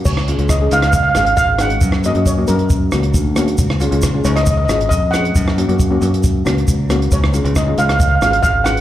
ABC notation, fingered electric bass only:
X:1
M:4/4
L:1/16
Q:1/4=136
K:Db
V:1 name="Fingered electric bass" clef=bass
D,,3 D,,3 D,,4 A,,,2 A,,,4 | G,,3 G,,3 G,,4 D,,2 =D,,4 | D,,3 D,,3 D,,4 A,,,2 F,,4 | G,,3 G,,3 G,,4 D,,2 D,,4 |
D,,3 D,,3 D,,4 A,,,2 A,,,4 |]